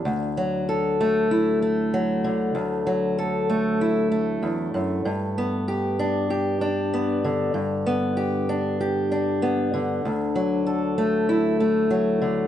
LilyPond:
\new Staff \with { instrumentName = "Steel-string acoustic guitar" } { \time 4/4 \key d \major \tempo 4 = 96 << { r8 fis8 a'8 a8 e'8 a8 fis4~ | fis8 fis8 a'8 a8 e'8 a4.~ | a8 b8 g'8 d'8 g'8 d'8 b4 | r8 b8 g'8 d'8 g'8 d'8 b4 |
r8 fis8 a'8 a8 e'8 a8 fis4 | } \\ { d,2.~ d,8 d8 | d,2. e,8 fis,8 | g,2.~ g,8 d8 | g,2.~ g,8 d8 |
d,2.~ d,8 d8 | } >> }